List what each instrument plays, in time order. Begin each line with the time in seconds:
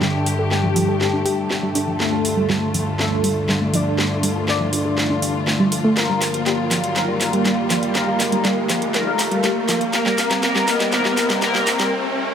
Already playing: string section G2 D3 A3 G4, synth drone G2 D3, analog polysynth D3 D4, ambient pad D4 G5 A5, riser
0.02 synth arpeggio sound G3, snare
0.26 synth arpeggio sound G3, open hi-hat
0.39 synth arpeggio sound A4
0.51 analog polysynth G3 G4, snare
0.64 synth arpeggio sound F3
0.76 synth arpeggio sound F3, open hi-hat
0.89 synth arpeggio sound A4
1.01 analog synth pad G3 A3 D4, snare
1.13 synth arpeggio sound D4
1.26 synth arpeggio sound G4, open hi-hat
1.50 synth arpeggio sound G3, snare
1.63 synth arpeggio sound G3
1.75 synth arpeggio sound D4, open hi-hat
1.88 synth arpeggio sound F3
2.00 string section D2 D3 F4, analog polysynth A3 A4, snare
2.13 synth arpeggio sound G3
2.25 open hi-hat
2.37 synth arpeggio sound G3
2.50 synth arpeggio sound G3, snare
2.74 synth arpeggio sound F3, open hi-hat
2.99 analog synth pad F3 A3 D4, analog polysynth A3 A4, snare
3.12 synth arpeggio sound D4
3.24 synth arpeggio sound G3, open hi-hat
3.49 synth arpeggio sound G3, snare
3.61 synth arpeggio sound A3, ambient pad F5
3.74 synth arpeggio sound F3, analog polysynth D4 D5, open hi-hat
3.98 synth arpeggio sound G3, snare
4.23 synth arpeggio sound G3, open hi-hat
4.36 synth arpeggio sound A4
4.48 analog polysynth D4 D5, snare
4.60 synth arpeggio sound F3
4.73 synth arpeggio sound F3, open hi-hat
4.85 synth arpeggio sound A4
4.97 analog synth pad F3 A3 D4, snare
5.10 synth arpeggio sound D4
5.22 synth arpeggio sound G4, open hi-hat
5.47 synth arpeggio sound A3, snare
5.60 synth arpeggio sound G3
5.72 analog synth pad F3 A3 D4, synth arpeggio sound A3, open hi-hat
5.84 synth arpeggio sound A3
5.97 string section D#2 G3, analog polysynth A#3 A#4, snare, closed hi-hat
6.09 synth arpeggio sound G3
6.21 snare, open hi-hat
6.34 synth arpeggio sound G3, closed hi-hat
6.46 synth arpeggio sound G3, ambient pad G4, snare, closed hi-hat
6.71 synth arpeggio sound F3, snare, open hi-hat
6.84 closed hi-hat
6.96 analog synth pad F3 G3 D#4, analog polysynth A#3 A#4, snare, closed hi-hat
7.08 synth arpeggio sound G3
7.21 snare, open hi-hat
7.33 synth arpeggio sound G3, closed hi-hat
7.45 synth arpeggio sound G3, snare, closed hi-hat
7.70 synth arpeggio sound F3, snare, open hi-hat
7.83 closed hi-hat
7.95 analog polysynth A#3 A#4, snare, closed hi-hat
8.08 synth arpeggio sound G3
8.20 snare, open hi-hat
8.32 synth arpeggio sound G3, closed hi-hat
8.45 synth arpeggio sound G3, snare, closed hi-hat
8.69 synth arpeggio sound F3, snare, open hi-hat
8.82 closed hi-hat
8.94 analog synth pad F3 G3 D#4, analog polysynth A#3 A#4, snare, closed hi-hat
9.07 synth arpeggio sound G3
9.19 snare, open hi-hat
9.32 synth arpeggio sound G3, closed hi-hat
9.44 synth arpeggio sound G3, snare, closed hi-hat
9.69 synth arpeggio sound F3, snare, open hi-hat
9.81 closed hi-hat
9.93 string section C2 C3 A#3, analog polysynth A#3 A#4, ambient pad C4, snare, closed hi-hat
10.06 synth arpeggio sound G3, snare
10.18 snare, open hi-hat
10.29 synth arpeggio sound G3, ambient pad D#5, snare, closed hi-hat
10.43 analog polysynth A#3 A#4, snare, closed hi-hat
10.56 synth arpeggio sound G3, snare
10.61 ambient pad A#4
10.68 snare, open hi-hat
10.80 synth arpeggio sound G3, snare, closed hi-hat
10.93 analog synth pad D#3 A#3 C4, analog polysynth A#3 A#4, snare, closed hi-hat
11.05 synth arpeggio sound G3, snare
11.17 snare, open hi-hat
11.30 synth arpeggio sound G3, snare, closed hi-hat
11.42 analog polysynth A#3 A#4, snare, closed hi-hat
11.55 synth arpeggio sound G3, snare
11.67 snare, open hi-hat
11.79 synth arpeggio sound G3, snare, closed hi-hat
11.92 string section A3